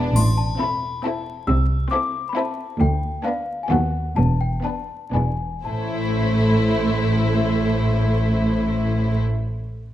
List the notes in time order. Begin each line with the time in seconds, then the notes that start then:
Already playing: D4
0.16 A1 A2 C6, triangle
0.37 A5
0.60 C4 E4 A4 B5
1.04 C4 E4 A4 A5
1.47 C2 C3 E6
1.91 C4 E4 A4 D6
2.29 B5
2.36 C4 E4 A4 A5
2.80 D2 G5
3.24 B3 D4 B4 F5
3.63 G#5
3.69 D#2 B3 F#4 A4 F#5
4.16 E1 E2 A5
4.41 G5
4.63 B3 D4 B4 A5
5.13 E1 E2 B3 D4 B4 G#5
5.64 A1 A2 A3 E4 C5 A5